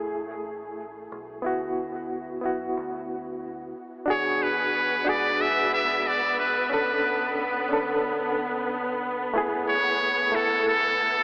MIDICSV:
0, 0, Header, 1, 5, 480
1, 0, Start_track
1, 0, Key_signature, 3, "minor"
1, 0, Tempo, 659341
1, 1050, Time_signature, 4, 2, 24, 8
1, 8178, End_track
2, 0, Start_track
2, 0, Title_t, "Muted trumpet"
2, 0, Program_c, 0, 59
2, 2983, Note_on_c, 0, 73, 86
2, 3222, Note_on_c, 0, 71, 92
2, 3233, Note_off_c, 0, 73, 0
2, 3701, Note_on_c, 0, 74, 89
2, 3712, Note_off_c, 0, 71, 0
2, 3939, Note_on_c, 0, 76, 97
2, 3950, Note_off_c, 0, 74, 0
2, 4173, Note_off_c, 0, 76, 0
2, 4177, Note_on_c, 0, 76, 95
2, 4419, Note_on_c, 0, 74, 91
2, 4429, Note_off_c, 0, 76, 0
2, 4651, Note_off_c, 0, 74, 0
2, 4655, Note_on_c, 0, 71, 78
2, 4876, Note_off_c, 0, 71, 0
2, 4893, Note_on_c, 0, 71, 77
2, 5342, Note_off_c, 0, 71, 0
2, 7055, Note_on_c, 0, 73, 104
2, 7537, Note_on_c, 0, 69, 91
2, 7548, Note_off_c, 0, 73, 0
2, 7773, Note_off_c, 0, 69, 0
2, 7780, Note_on_c, 0, 69, 98
2, 8178, Note_off_c, 0, 69, 0
2, 8178, End_track
3, 0, Start_track
3, 0, Title_t, "Reed electric piano"
3, 0, Program_c, 1, 4
3, 0, Control_c, 1, 64, 127
3, 0, Note_on_c, 1, 57, 69
3, 0, Note_on_c, 1, 64, 61
3, 0, Note_on_c, 1, 68, 77
3, 1018, Note_off_c, 1, 57, 0
3, 1026, Note_off_c, 1, 64, 0
3, 1034, Note_off_c, 1, 68, 0
3, 1035, Note_on_c, 1, 59, 81
3, 1051, Note_on_c, 1, 64, 77
3, 1058, Control_c, 1, 64, 0
3, 1066, Note_on_c, 1, 66, 90
3, 1183, Control_c, 1, 64, 127
3, 1738, Note_off_c, 1, 59, 0
3, 1746, Note_off_c, 1, 64, 0
3, 1754, Note_off_c, 1, 66, 0
3, 1756, Note_on_c, 1, 59, 70
3, 1773, Note_on_c, 1, 64, 65
3, 1787, Note_on_c, 1, 66, 79
3, 2939, Note_off_c, 1, 59, 0
3, 2947, Note_off_c, 1, 64, 0
3, 2953, Note_on_c, 1, 62, 83
3, 2955, Note_off_c, 1, 66, 0
3, 2969, Note_on_c, 1, 66, 78
3, 2980, Control_c, 1, 64, 0
3, 2986, Note_on_c, 1, 68, 91
3, 3090, Control_c, 1, 64, 127
3, 3658, Note_off_c, 1, 62, 0
3, 3666, Note_off_c, 1, 66, 0
3, 3674, Note_off_c, 1, 68, 0
3, 3674, Note_on_c, 1, 62, 74
3, 3688, Note_on_c, 1, 66, 68
3, 3705, Note_on_c, 1, 68, 77
3, 4858, Note_off_c, 1, 62, 0
3, 4865, Note_off_c, 1, 66, 0
3, 4874, Note_off_c, 1, 68, 0
3, 4875, Note_on_c, 1, 61, 85
3, 4891, Note_on_c, 1, 62, 76
3, 4900, Control_c, 1, 64, 0
3, 4905, Note_on_c, 1, 69, 91
3, 5008, Control_c, 1, 64, 127
3, 5578, Note_off_c, 1, 61, 0
3, 5586, Note_off_c, 1, 62, 0
3, 5594, Note_off_c, 1, 69, 0
3, 5597, Note_on_c, 1, 61, 67
3, 5611, Note_on_c, 1, 62, 66
3, 5628, Note_on_c, 1, 69, 83
3, 6780, Note_off_c, 1, 61, 0
3, 6787, Note_off_c, 1, 62, 0
3, 6795, Note_off_c, 1, 69, 0
3, 6796, Note_on_c, 1, 57, 85
3, 6811, Note_on_c, 1, 64, 79
3, 6819, Control_c, 1, 64, 0
3, 6826, Note_on_c, 1, 68, 97
3, 6963, Control_c, 1, 64, 127
3, 7499, Note_off_c, 1, 57, 0
3, 7507, Note_off_c, 1, 64, 0
3, 7511, Note_on_c, 1, 57, 79
3, 7514, Note_off_c, 1, 68, 0
3, 7529, Note_on_c, 1, 64, 68
3, 7543, Note_on_c, 1, 69, 79
3, 8178, Note_off_c, 1, 57, 0
3, 8178, Note_off_c, 1, 64, 0
3, 8178, Note_off_c, 1, 69, 0
3, 8178, End_track
4, 0, Start_track
4, 0, Title_t, "String section"
4, 0, Program_c, 2, 48
4, 2978, Note_on_c, 2, 59, 69
4, 8178, Note_off_c, 2, 59, 0
4, 8178, End_track
5, 0, Start_track
5, 0, Title_t, "Fingered electric bass"
5, 0, Program_c, 3, 33
5, 0, Note_on_c, 3, 33, 80
5, 794, Note_off_c, 3, 33, 0
5, 815, Note_on_c, 3, 35, 86
5, 1029, Note_off_c, 3, 35, 0
5, 1057, Note_on_c, 3, 38, 87
5, 1754, Note_off_c, 3, 38, 0
5, 1777, Note_on_c, 3, 42, 79
5, 2014, Note_off_c, 3, 42, 0
5, 2018, Note_on_c, 3, 38, 81
5, 2715, Note_off_c, 3, 38, 0
5, 2976, Note_on_c, 3, 40, 92
5, 3674, Note_off_c, 3, 40, 0
5, 3693, Note_on_c, 3, 44, 79
5, 4872, Note_off_c, 3, 44, 0
5, 4896, Note_on_c, 3, 35, 86
5, 5594, Note_off_c, 3, 35, 0
5, 5617, Note_on_c, 3, 38, 84
5, 6794, Note_off_c, 3, 38, 0
5, 6816, Note_on_c, 3, 30, 95
5, 7514, Note_off_c, 3, 30, 0
5, 7534, Note_on_c, 3, 33, 84
5, 8178, Note_off_c, 3, 33, 0
5, 8178, End_track
0, 0, End_of_file